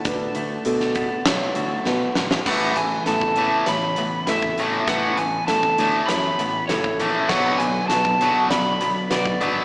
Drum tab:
CC |----------------|x---------------|----------------|x---------------|
HH |x-x-x-x-x-x-----|--x-x-x-x-x-x-x-|x-x-x-x-x-x-x-x-|--x-x-x-x-x-x-x-|
SD |-----o--o---o-oo|o---o---o---o---|o---o---o---o---|o---o---o---o---|
BD |o-----o---------|o----o-------o--|o----o-------o--|o----o-------o--|